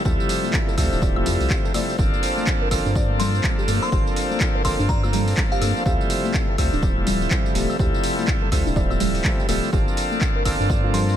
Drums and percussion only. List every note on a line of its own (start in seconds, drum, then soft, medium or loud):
0.05 kick loud
0.05 tambourine soft
0.20 tambourine soft
0.29 open hi-hat loud
0.29 tambourine medium
0.44 tambourine soft
0.44 high conga medium
0.53 kick loud
0.53 clap loud
0.53 tambourine soft
0.69 tambourine soft
0.78 kick medium
0.78 open hi-hat loud
0.78 tambourine medium
0.78 high woodblock medium
0.93 tambourine soft
1.02 kick loud
1.02 tambourine soft
1.16 high conga medium
1.16 high woodblock medium
1.26 open hi-hat loud
1.26 tambourine medium
1.26 low conga medium
1.41 open hi-hat medium
1.41 tambourine soft
1.50 kick loud
1.50 clap loud
1.50 tambourine soft
1.65 tambourine soft
1.74 open hi-hat loud
1.74 tambourine medium
1.74 high conga medium
1.74 high woodblock medium
1.89 tambourine soft
1.99 kick loud
1.99 tambourine soft
2.14 tambourine soft
2.23 open hi-hat loud
2.23 tambourine medium
2.37 tambourine soft
2.37 high conga medium
2.47 kick loud
2.47 clap loud
2.47 tambourine soft
2.71 kick medium
2.71 open hi-hat loud
2.71 tambourine medium
2.71 high woodblock medium
2.86 tambourine soft
2.95 kick loud
2.95 tambourine soft
3.10 high conga medium
3.20 open hi-hat loud
3.20 tambourine medium
3.20 low conga loud
3.35 tambourine soft
3.44 kick loud
3.44 clap loud
3.44 tambourine soft
3.59 tambourine soft
3.68 open hi-hat loud
3.68 tambourine medium
3.68 high conga medium
3.83 tambourine soft
3.83 high woodblock medium
3.92 kick loud
3.92 tambourine soft
4.07 tambourine soft
4.16 open hi-hat loud
4.16 tambourine medium
4.31 tambourine soft
4.31 high conga loud
4.41 kick loud
4.41 clap loud
4.41 tambourine soft
4.65 kick medium
4.65 open hi-hat loud
4.65 tambourine medium
4.65 high woodblock medium
4.80 tambourine soft
4.89 kick loud
4.89 tambourine soft
5.03 tambourine soft
5.03 high conga medium
5.03 high woodblock medium
5.13 open hi-hat loud
5.13 tambourine medium
5.13 low conga loud
5.28 open hi-hat medium
5.28 tambourine soft
5.37 kick loud
5.37 clap loud
5.37 tambourine soft
5.52 tambourine soft
5.62 open hi-hat loud
5.62 tambourine medium
5.62 high conga loud
5.62 high woodblock medium
5.77 tambourine soft
5.86 kick loud
5.86 tambourine soft
6.01 tambourine soft
6.10 open hi-hat loud
6.10 tambourine medium
6.24 tambourine soft
6.24 high conga loud
6.34 kick loud
6.34 clap loud
6.34 tambourine soft
6.58 kick medium
6.58 open hi-hat loud
6.58 tambourine medium
6.58 high woodblock medium
6.73 tambourine soft
6.83 kick loud
6.83 tambourine soft
6.97 high conga medium
7.07 open hi-hat loud
7.07 tambourine medium
7.07 low conga loud
7.22 tambourine soft
7.31 kick loud
7.31 clap loud
7.31 tambourine soft
7.46 tambourine soft
7.55 open hi-hat loud
7.55 tambourine medium
7.55 high conga loud
7.70 tambourine soft
7.70 high woodblock medium
7.79 kick loud
7.79 tambourine soft
7.94 tambourine soft
8.04 open hi-hat loud
8.04 tambourine medium
8.18 tambourine soft
8.18 high conga loud
8.28 kick loud
8.28 clap loud
8.28 tambourine soft
8.52 kick medium
8.52 open hi-hat loud
8.52 tambourine medium
8.52 high woodblock medium
8.67 tambourine soft
8.76 kick loud
8.76 tambourine soft
8.91 tambourine soft
8.91 high conga medium
8.91 high woodblock medium
9.00 open hi-hat loud
9.00 tambourine medium
9.00 low conga loud
9.15 open hi-hat medium
9.15 tambourine soft
9.24 kick loud
9.24 clap loud
9.24 tambourine soft
9.40 tambourine soft
9.49 open hi-hat loud
9.49 tambourine medium
9.49 high conga loud
9.49 high woodblock medium
9.64 tambourine soft
9.73 kick loud
9.73 tambourine soft
9.88 tambourine soft
9.97 open hi-hat loud
9.97 tambourine medium
10.12 tambourine soft
10.12 high conga medium
10.21 kick loud
10.21 clap loud
10.21 tambourine soft
10.45 kick medium
10.45 open hi-hat loud
10.45 tambourine medium
10.45 high woodblock medium
10.61 tambourine soft
10.70 kick loud
10.70 tambourine soft
10.84 high conga medium
10.94 open hi-hat loud
10.94 tambourine medium
10.94 low conga medium
11.09 tambourine soft